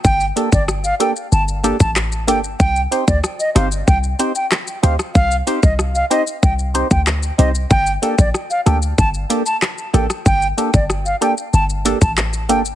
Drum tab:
HH |--x---x---x---x-|--x---x---x---x-|--x---x---x---x-|--x---x---x---x-|
SH |xxxxxxxxxxxxxxxx|xxxxxxxxxxxxxxxx|xxxxxxxxxxxxxxxx|xxxxxxxxxxxxxxxx|
CP |------------x---|------------x---|------------x---|------------x---|
SD |----r-------r---|----r-r-----r-rr|----r-------r---|----r-r-----r-rr|
BD |o--o-------o----|o--o----o-------|o--o----o--o----|o--o----o-------|

HH |--x---x---x---x-|
SH |xxxxxxxxxxxxxxxx|
CP |------------x---|
SD |----r-------r---|
BD |o--o-------o----|